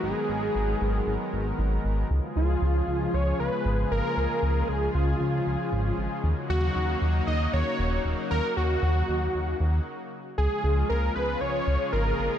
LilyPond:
<<
  \new Staff \with { instrumentName = "Analog synth lead" } { \time 4/4 \key cis \mixolydian \tempo 4 = 116 gis'2. r4 | r8 eis'4. cis''8 b'4 ais'8~ | ais'4 gis'8 eis'2 r8 | r8 fis'4 r8 dis''8 cis''4 r8 |
ais'8 fis'2 r4. | gis'4 ais'8 b'8 cis''4 ais'4 | }
  \new Staff \with { instrumentName = "Analog synth pad" } { \clef bass \time 4/4 \key cis \mixolydian << { <fis gis b ais'>1 | <eis gis eis' gis'>1~ | <eis gis eis' gis'>1 | <fis ais dis' fis'>1~ |
<fis ais dis' fis'>2. r4 | <eis gis eis' gis'>1 | } \\ { dis1 | cis1~ | cis1~ | cis1~ |
cis2. r4 | cis1 | } >> }
  \new Staff \with { instrumentName = "Analog synth bass" } { \clef bass \time 4/4 \key cis \mixolydian gis,,8 gis,,8 gis,,8 gis,,8 gis,,8 gis,,8 gis,,8 gis,,8 | cis,8 cis,8 cis,8 cis,8 cis,8 cis,8 gis,,8 gis,,8 | cis,8 cis,8 cis,8 cis,8 cis,8 cis,8 gis,,8 gis,,8 | dis,8 dis,8 dis,8 dis,8 dis,8 dis,8 dis,,8 dis,,8 |
dis,8 dis,8 dis,8 dis,8 dis,8 dis,8 r4 | cis,8 cis,8 cis,8 cis,8 cis,8 cis,8 gis,,8 gis,,8 | }
>>